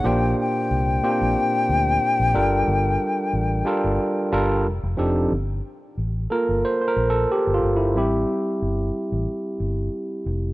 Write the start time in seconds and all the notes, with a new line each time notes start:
0.04 A#1 A#2 A#3 D4 G4 C5 G5
0.40 G5
0.71 C2
1.03 A#2 A#3 C4 G4 C5
1.10 D4
1.21 A#1
1.69 D2
2.20 A#1
2.34 G1 G3 D4 F4 A4 A#4
2.68 G1
3.33 A1
3.65 G3 D4 F4 A4 A#4
3.84 G1
4.32 G1 G3 D4 F4 A4 A#4
4.66 F1
4.83 F1
4.97 F1 F3 C4 D4 D#4 G4 A4
5.32 G1
5.98 A1
6.30 A#3 F4 A4 A#4
6.49 G1
6.65 C5
6.81 C5
6.88 A#4
6.96 A#1
7.10 A4
7.32 G4
7.47 G1
7.54 F4
7.63 G1
7.76 E4
7.95 A1 G3 C4 E4 G4
8.62 G1
9.12 A1
9.60 G1
10.26 F1